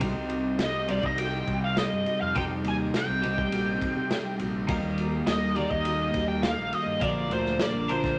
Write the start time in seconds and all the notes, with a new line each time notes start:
0.00 C2 C3 G3 C4 D#4 G4, kick, ride
0.17 C2
0.29 ride
0.59 C2, snare, ride
0.63 D#5
0.87 C3 G3 C4 D#4 G4 D5, ride
1.03 C2 D#5, kick
1.18 G5, ride
1.47 C2, kick, ride
1.64 F5
1.77 D#5, snare, ride
1.93 G2
2.06 ride
2.21 F2 F5
2.35 C3 G3 C4 D#4 G4 G5, kick, ride
2.64 D#2 G#5, ride
2.94 G5, snare, ride
3.09 C2
3.22 C3 G3 C4 D#4 G4, ride
3.38 kick
3.52 A#1, ride
3.82 kick, ride
3.96 C3
4.11 snare, ride
4.39 A#1, ride
4.67 D#2 D#3 G3 A#3 D#4 G4, kick, ride
4.83 D#2
4.98 ride
5.27 D#2 D#5, snare, ride
5.55 D#3 G3 A#3 D#4 G4 D5, ride
5.71 D#2 D#5, kick
5.85 ride
6.14 D#2, kick, ride
6.28 G5
6.43 F5, snare, ride
6.57 A#1
6.73 D#5, ride
6.86 G2
7.00 A#1 A#2 D3 F3 A#3 D4 F4 A#4 D5, kick, ride
7.31 D2 C5, ride
7.46 snare
7.59 D5, snare, ride
7.74 A#1
7.88 A#2 D3 F3 A#3 D4 A#4 C5, ride
8.04 kick, snare